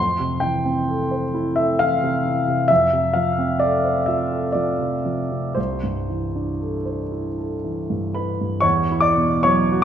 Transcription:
Already playing: F2 C6
0.20 C3
0.40 E3 G5
0.65 C4
0.89 A4
1.11 C5
1.34 E4
1.56 A4 E5
1.79 E3 F5
2.03 C3
2.25 E3
2.48 C3
2.68 F2 E5
2.93 C3
3.13 F3 F5
3.38 C4
3.60 A4 D5
3.84 C5
4.06 F4 E5
4.32 A4
4.52 F3 D5
4.79 C3
5.06 F3
5.31 C3
5.55 C2 C5
5.83 G2
6.10 E3
6.35 D4
6.61 A4
6.85 C5
7.12 E4
7.38 A4
7.64 E3
7.90 G2
8.15 E3 B4 B5
8.41 G2
8.60 E2 C#5 C#6
8.91 E4
9.01 D5 D6
9.17 B2
9.43 F#3 C#5 C#6
9.72 F#4

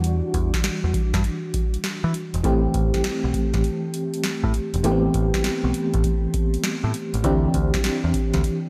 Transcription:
Already playing: E2 E3 G3 D4 F#4
0.04 closed hi-hat
0.34 E2, kick, closed hi-hat
0.54 kick, snare, closed hi-hat
0.64 snare, closed hi-hat
0.84 E2
0.94 kick, closed hi-hat
1.14 G2, kick, snare, closed hi-hat
1.24 closed hi-hat
1.54 kick, closed hi-hat
1.74 closed hi-hat
1.84 snare, closed hi-hat
2.04 E3
2.14 closed hi-hat
2.34 E1, closed hi-hat
2.44 A1 E3 A3 C4 G4, kick, closed hi-hat
2.74 A1, kick, closed hi-hat
2.94 kick, snare, closed hi-hat
3.04 snare, closed hi-hat
3.24 B1
3.34 kick, closed hi-hat
3.54 A1, kick, snare, closed hi-hat
3.64 closed hi-hat
3.94 closed hi-hat
4.14 closed hi-hat
4.24 snare, closed hi-hat
4.44 A2, kick
4.54 closed hi-hat
4.74 E1, closed hi-hat
4.84 A1 E3 A3 B3 G4, closed hi-hat
4.92 C4
5.14 A1, kick, closed hi-hat
5.34 kick, snare, closed hi-hat
5.44 snare, closed hi-hat
5.64 B1
5.74 closed hi-hat
5.94 A1, kick, closed hi-hat
6.04 kick, closed hi-hat
6.34 kick, closed hi-hat
6.54 closed hi-hat
6.64 snare, closed hi-hat
6.84 A2
6.94 closed hi-hat
7.14 A1, closed hi-hat
7.24 D2 E3 C4 D4 G4, kick, closed hi-hat
7.54 D2, kick, closed hi-hat
7.74 kick, snare, closed hi-hat
7.84 snare, closed hi-hat
8.04 E2
8.14 kick, closed hi-hat
8.34 D2, kick, snare, closed hi-hat
8.44 closed hi-hat

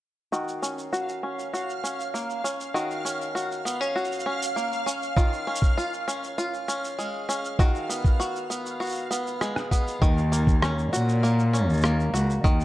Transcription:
0.32 D#3 F#4 F5 F6, shaker
0.48 shaker
0.62 C#4, shaker
0.78 shaker
0.93 F#4, shaker
1.09 shaker
1.23 C#4
1.39 shaker
1.53 F#4, shaker
1.69 shaker
1.84 C#4, shaker
2.00 shaker
2.14 A#3, shaker
2.30 shaker
2.44 C#4, shaker
2.60 shaker
2.74 D#3 F#4, shaker
2.91 shaker
3.05 C#4, shaker
3.21 shaker
3.35 F#4, shaker
3.52 shaker
3.65 B3, shaker
3.81 C#4, shaker
3.96 F#4, shaker
4.04 shaker
4.12 shaker
4.19 shaker
4.26 C#4
4.42 shaker
4.56 A#3, shaker
4.72 shaker
4.86 C#4, shaker
5.02 shaker
5.16 D#3 F4, kick, shaker
5.33 shaker
5.47 C#4
5.55 shaker
5.62 kick, shaker
5.77 F4, shaker
5.93 shaker
6.08 C#4, shaker
6.24 shaker
6.38 F4, shaker
6.54 shaker
6.68 C#4, shaker
6.84 shaker
6.99 G#3, shaker
7.29 C#4, shaker
7.45 shaker
7.59 D#3 F#4, kick, shaker
7.75 shaker
7.89 B3, shaker
8.05 kick, shaker
8.20 F#4, shaker
8.36 shaker
8.50 B3, shaker
8.66 shaker
8.80 F#4, shaker
8.84 shaker
8.86 shaker
8.89 shaker
8.91 shaker
8.94 shaker
8.97 shaker
9.11 B3, shaker
9.27 shaker
9.41 G#3, cross-stick, shaker
9.56 cross-stick, shaker
9.71 B3, kick, shaker
9.87 shaker
10.02 D#2 D#3, kick, shaker
10.18 shaker
10.32 A#3, shaker
10.47 kick, shaker
10.62 C#4, cross-stick, shaker
10.78 shaker
10.93 A#2 F#4, shaker
11.09 shaker
11.23 A#3, shaker
11.39 shaker
11.53 C#4, shaker
11.68 D#2, shaker
11.73 shaker
11.77 shaker
11.81 A#3, cross-stick, shaker
11.84 shaker
12.00 shaker
12.14 C#2 F#4, shaker
12.30 shaker
12.44 D#2 D#3, kick, shaker
12.60 shaker

